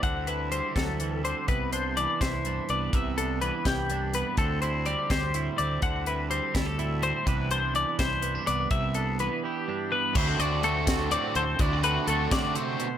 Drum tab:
CC |------|------|------|------|
HH |xxxxxx|xxxxxx|xxxxxx|xxxxxx|
SD |---o--|---o--|---o--|---o--|
BD |o--o--|o--o--|o--o--|o--o--|

CC |------|------|------|x-----|
HH |xxxxxx|xxxxxx|xxx---|-xxxxx|
SD |---o--|---o--|------|---o--|
BD |o--o--|o--o--|o-----|o--o--|

CC |------|
HH |xxxxxx|
SD |---o--|
BD |o--o--|